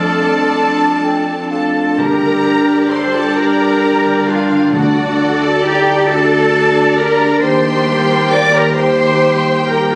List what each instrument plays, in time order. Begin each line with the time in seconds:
Already playing: double bass section F2, harp F3 A3 A4, french horn section A3 D4, viola section D4 A4, clarinet F4, cello section A4, violin section D5 A5, oboe F5
0.36 harp D5
0.58 harp A4, flute A5
1.04 harp A3, flute G5
1.51 harp A3, clarinet F4, cello section A4, flute F5, violin section A5
1.75 harp A#3
1.97 timpani G2, double bass section G2, harp G2, french horn section G3, viola section D4 G4, clarinet G4, cello section A#4, violin section D5 A#5, oboe G5
2.21 harp D3
2.44 harp G3
2.89 clarinet A4, cello section C5, harp D5, violin section C6
3.13 clarinet F4, harp G4, cello section A4, violin section A5
3.35 clarinet G4, viola section A#4, cello section A#4, harp D5, violin section A#5
3.82 harp G3
4.05 harp D3
4.28 harp G3, clarinet D4, cello section F4, violin section F5
4.51 harp D3
4.72 double bass section D2, timpani D3, french horn section A3 D5, clarinet D4, cello section F#4, viola section A4 D5, violin section D5 F#5, oboe A5
5.41 clarinet F#4, cello section A4, harp D5, violin section A5
5.64 clarinet D#4, cello section G4, violin section G5
5.87 harp D5
6.08 viola section D4 A4, clarinet F#4, cello section A4, violin section D5 A5, oboe A5
6.31 harp D5
6.53 harp D4
6.96 harp D4, clarinet G4, cello section A#4, violin section A#5
7.20 harp A3
7.40 double bass section D#2, harp D#3, french horn section A#3 D#4, viola section A#3 G4, clarinet G4, cello section C5, violin section G5 C6
7.64 harp D#4
7.86 harp G3
8.08 harp G4
8.30 harp A#4, clarinet A#4, cello section D5, violin section D6
8.53 clarinet G4, harp G4, cello section A#4, violin section A#5
8.75 viola section A#3 G4, clarinet G4, harp A#4, cello section C5, violin section G5 C6, oboe G5
8.99 harp G4
9.22 harp G3
9.45 harp D#4
9.68 harp G3, clarinet G4, cello section A#4, violin section A#5
9.92 clarinet D4